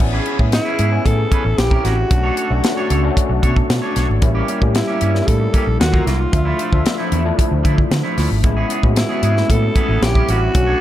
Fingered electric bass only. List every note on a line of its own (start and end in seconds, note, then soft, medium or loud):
0.00 0.18 A1 medium
0.39 0.58 A2 medium
0.79 0.97 G#2 medium
1.05 1.24 A2 medium
1.45 1.54 A1 medium
1.58 1.76 A#1 medium
1.85 2.03 A1 medium
2.11 2.29 B1 medium
2.51 2.60 B1 medium
2.90 3.09 C#2 medium
3.29 3.39 B1 medium
3.43 3.61 B2 medium
3.70 3.79 B2 medium
3.96 4.05 B1 medium
4.09 4.18 G#1 medium
4.22 4.40 A1 medium
4.62 4.80 A2 medium
5.02 5.20 G2 medium
5.28 5.46 A2 medium
5.67 5.76 A#1 medium
5.80 5.99 D#2 medium
6.07 6.25 C2 medium
6.33 6.51 D2 medium
6.73 6.82 D2 medium
7.12 7.30 E2 medium
7.51 7.61 D2 medium
7.65 7.83 D3 medium
7.91 8.00 D3 medium
8.18 8.27 D2 medium
8.31 8.44 G#1 medium
8.44 8.62 A1 medium
8.83 9.02 A2 medium
9.23 9.41 G#2 medium
9.49 9.68 A2 medium
9.89 9.98 A1 medium
10.02 10.21 A#1 medium
10.28 10.47 A1 medium
10.55 10.73 B1 loud